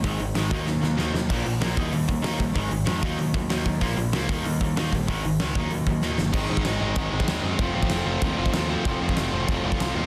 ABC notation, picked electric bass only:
X:1
M:4/4
L:1/8
Q:1/4=191
K:Abmix
V:1 name="Picked electric bass" clef=bass
A,,, A,,, A,,, E,, E,, E,, E,, E,, | B,,, B,,, B,,, E,, E,, E,, E,, B,,, | A,,, A,,, F,, E,, E,, E,, E,, E,, | B,,, B,,, D,, E,, E,, E,, E,, B,,, |
A,,, A,,, D,, E,, E,, E,, E,, =G,,, | A,,, A,, A,,, A,,, A,,, A,,, E,, G,, | F,,, =A,,, F,,, F,,, E,, F,,, E,,2 | F,,, F,, F,,, F,,, F,,, F,,, C,, E,, |]